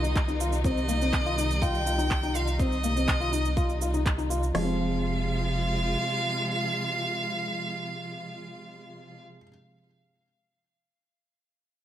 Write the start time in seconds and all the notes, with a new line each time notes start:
Already playing: C2 C3 D#3 G3 D#4 D#5
0.03 D#4, shaker
0.16 kick, clap, shaker
0.28 D#4, shaker
0.40 F4, shaker
0.53 shaker
0.64 C4 D#5, kick, shaker
0.77 shaker
0.89 A#3, shaker
1.01 C4, shaker
1.13 kick, clap, shaker
1.26 F4, shaker
1.38 D#4, shaker
1.51 shaker
1.62 F4 G5, kick, shaker
1.75 shaker
1.86 F4, shaker
1.98 D#4, shaker
2.11 kick, clap, shaker
2.23 D#4, shaker
2.35 F4 F5, shaker
2.47 shaker
2.59 C4 D#5, kick, shaker
2.72 shaker
2.84 A#3, shaker
2.96 C4, shaker
3.08 kick, clap, shaker
3.20 F4, shaker
3.33 D#4, shaker
3.45 shaker
3.56 F4, kick, shaker
3.69 shaker
3.82 F4, shaker
3.94 D#4, shaker
4.06 kick, clap, shaker
4.18 D#4, shaker
4.30 F4, shaker
4.43 shaker
4.54 F1 C3 F3 G#3 F4 F5, snare, open hi-hat
4.58 G#3
4.63 C4
4.67 F4